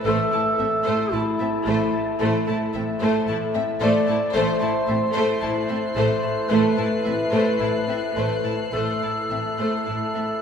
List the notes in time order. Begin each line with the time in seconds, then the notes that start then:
Already playing: A3
0.05 A1 A2 A3 E4 A4 C5 A5
0.32 A2 A3 E4 A5
0.58 A1 A2 A3 C4 E5
0.85 A2 A3 C5
1.11 A1 A2 A3 E4 A5
1.38 A2 A3 C4 E5
1.66 A1 A2 A3 C5
2.20 A1 A2 A3 C5
2.47 A2 A3 E4 A5
2.73 A1 A2 A3 C4 E5
3.01 A2 A3 C5
3.27 A1 A2 A3 E4 A5
3.54 A2 A3 C4 E5
3.80 A1 A2 A3 C5 D5
4.07 A2 A3 E4 A5
4.34 A1 A2 A3 E4 A4 C5 A5 C7
4.61 A2 A3 E4 A5
4.88 A1 A2 A3 C4 E5
5.13 A2 A3 C5
5.41 A1 A2 A3 E4 A5 F#6
5.68 A2 A3 C4 E5
5.95 A1 A2 A3 C5
6.48 A1 A2 A3 B4 C5
6.77 A2 A3 E4 A5
7.04 A1 A2 A3 C4 E5
7.32 A2 A3 C5
7.60 A1 A2 A3 E4 A5
7.88 A2 A3 C4 E5
8.15 A1 A2 A3 C5
8.44 A2 A3 E4 A5
8.72 A1 A2 A3 E4 A4 C5 A5
9.02 A2 A3 E4 A5
9.30 A1 A2 A3 C4 E5
9.58 A2 A3 C5
9.86 A1 A2 A3 E4 A5
10.14 A2 A3 C4 E5